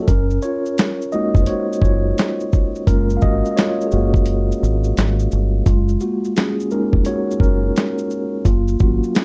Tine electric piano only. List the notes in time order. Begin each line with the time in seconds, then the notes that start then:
Already playing: F#3 A#3 F#4 C#5 D#5
0.02 A4
0.08 C#4 A#4
0.43 F4 C#5
1.12 G#3 A#3 D#4 F#4 D#5
1.42 C5
1.47 F#4 C#5
1.82 F4 C#5
2.87 G#3 A#3 C#4 F4 A#4
3.17 F5
3.22 F#4 D#5
3.52 D#5
3.57 F4 C#5
3.87 G#4
3.92 A#3 F#4
5.66 G#3 F4
6.01 A#3 F#4
6.37 C#4 G#4
6.72 G#3 A#3 C#4 D#4 A#4
7.06 F#4 C#5
7.41 C#4 A#4
8.45 A#3 F4
8.80 F#3 A#3 C#4 F4 F#4
9.15 C#4 G#4